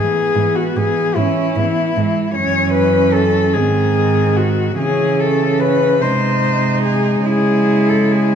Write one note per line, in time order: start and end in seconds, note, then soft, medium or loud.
0.00 0.36 E3 soft
0.00 1.19 B3 medium
0.00 0.57 G#4 medium
0.36 0.44 G#2 medium
0.36 0.77 E3 soft
0.55 0.78 F#4 medium
0.77 0.85 G#2 medium
0.77 1.17 E3 soft
0.77 1.17 G#4 medium
1.15 1.24 G#2 medium
1.15 1.57 C#4 medium
1.15 2.34 E4 medium
1.19 1.57 E3 medium
1.56 1.64 G#2 medium
1.56 1.96 E3 medium
1.56 1.98 B3 medium
1.96 2.04 G#2 medium
1.96 2.35 E3 soft
1.96 2.36 G#3 medium
2.35 3.56 F#2 medium
2.35 3.56 E3 medium
2.35 3.57 C#4 medium
2.35 2.73 C#5 medium
2.74 3.14 B4 medium
3.12 3.54 A4 medium
3.53 4.78 G#2 medium
3.53 4.78 D#3 medium
3.53 4.78 C4 medium
3.53 4.38 G#4 medium
4.36 4.77 F#4 medium
4.78 6.02 C#3 medium
4.78 6.02 E3 medium
4.78 6.03 C#4 medium
4.78 5.21 G#4 medium
5.20 5.61 A4 medium
5.59 6.03 B4 medium
6.00 7.24 C3 soft
6.00 8.35 G#3 medium
6.00 7.27 D#4 medium
6.00 6.83 C5 medium
6.84 7.23 G#4 medium
7.24 8.35 C#3 medium
7.24 8.35 E4 medium
7.24 7.90 G#4 medium
7.89 8.13 A4 medium
8.11 8.35 G#4 medium